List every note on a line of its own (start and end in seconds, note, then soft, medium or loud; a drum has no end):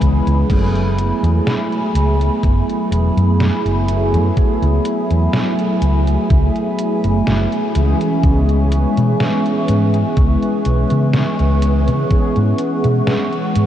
0.00 0.18 C#2 medium
0.00 0.44 E3 medium
0.00 0.44 G#3 medium
0.00 0.44 B3 medium
0.00 0.44 C#4 medium
0.00 0.44 G#4 medium
0.00 0.45 B4 medium
0.00 0.45 E5 medium
0.00 0.45 G#5 medium
0.00 7.71 B5 medium
0.00 kick medium
0.00 closed hi-hat medium
0.27 0.42 C#2 loud
0.27 closed hi-hat medium
0.47 1.10 F#1 medium
0.47 3.81 F#3 medium
0.47 3.82 A3 medium
0.47 7.72 A3 medium
0.47 3.82 B3 medium
0.47 3.83 E4 medium
0.47 3.83 G#4 medium
0.47 13.66 E5 medium
0.47 11.59 G#5 medium
0.47 kick loud
0.47 closed hi-hat medium
0.47 crash medium
0.76 closed hi-hat soft
0.99 closed hi-hat medium
1.23 1.39 E2 medium
1.23 closed hi-hat medium
1.47 snare loud
1.47 closed hi-hat medium
1.72 closed hi-hat soft
1.95 2.28 C#2 medium
1.95 closed hi-hat medium
2.21 closed hi-hat medium
2.43 2.60 F#1 medium
2.43 kick loud
2.43 closed hi-hat medium
2.70 closed hi-hat soft
2.91 3.09 E1 medium
2.91 closed hi-hat medium
3.17 3.49 F#2 medium
3.17 closed hi-hat medium
3.40 snare loud
3.40 closed hi-hat medium
3.65 4.15 F#1 medium
3.65 closed hi-hat soft
3.88 4.31 F#3 medium
3.88 4.31 A3 medium
3.88 4.31 B3 medium
3.88 4.31 E4 medium
3.88 4.32 G#4 medium
3.88 closed hi-hat medium
4.14 4.29 F#2 loud
4.14 closed hi-hat medium
4.36 7.69 F#3 medium
4.36 7.70 A3 medium
4.36 7.70 B3 medium
4.36 7.70 E4 medium
4.36 7.71 G#4 medium
4.36 kick loud
4.36 closed hi-hat medium
4.62 4.78 C#2 loud
4.62 closed hi-hat soft
4.85 closed hi-hat loud
5.11 5.26 E2 medium
5.11 closed hi-hat medium
5.33 snare loud
5.33 closed hi-hat medium
5.59 closed hi-hat soft
5.82 6.15 C#2 medium
5.82 closed hi-hat medium
6.07 closed hi-hat medium
6.30 6.47 C#2 medium
6.30 kick loud
6.30 closed hi-hat medium
6.56 closed hi-hat soft
6.79 closed hi-hat medium
7.04 7.20 F#1 medium
7.04 closed hi-hat medium
7.27 7.44 F#1 loud
7.27 snare loud
7.27 closed hi-hat medium
7.52 closed hi-hat soft
7.74 7.93 C#2 medium
7.74 8.18 E3 medium
7.74 8.18 G#3 medium
7.74 8.18 B3 medium
7.74 8.18 C#4 medium
7.74 8.18 G#4 medium
7.74 13.66 B4 medium
7.74 13.66 C#6 medium
7.74 closed hi-hat loud
8.01 closed hi-hat medium
8.22 8.84 C#2 loud
8.22 11.56 E3 medium
8.22 11.56 G#3 medium
8.22 11.57 B3 medium
8.22 11.57 C#4 medium
8.22 11.57 G#4 medium
8.22 kick loud
8.22 closed hi-hat soft
8.49 closed hi-hat soft
8.72 closed hi-hat medium
8.97 9.13 B2 medium
8.97 closed hi-hat medium
9.20 snare loud
9.20 closed hi-hat medium
9.46 closed hi-hat soft
9.68 10.02 G#2 medium
9.68 closed hi-hat medium
9.94 closed hi-hat medium
10.17 10.34 C#2 medium
10.17 kick loud
10.17 closed hi-hat medium
10.43 closed hi-hat soft
10.65 10.83 B1 loud
10.65 closed hi-hat medium
10.90 11.23 C#3 medium
10.90 closed hi-hat medium
11.13 snare loud
11.13 closed hi-hat medium
11.39 11.89 C#2 medium
11.39 closed hi-hat soft
11.61 12.04 E3 medium
11.61 12.05 G#3 medium
11.61 12.05 B3 medium
11.61 12.05 C#4 medium
11.61 12.05 G#4 medium
11.61 13.66 F#5 medium
11.61 closed hi-hat medium
11.88 12.03 C#3 loud
11.88 closed hi-hat medium
12.09 13.66 E3 medium
12.09 13.66 G#3 medium
12.09 13.66 B3 medium
12.09 13.66 C#4 medium
12.09 13.66 G#4 medium
12.09 muted fingered electric bass stroke soft
12.09 kick loud
12.09 closed hi-hat soft
12.36 12.52 G#2 medium
12.36 closed hi-hat soft
12.59 closed hi-hat medium
12.84 13.00 B2 medium
12.84 closed hi-hat medium
13.07 snare loud
13.07 closed hi-hat medium
13.33 closed hi-hat soft
13.55 13.66 G#2 medium
13.55 closed hi-hat medium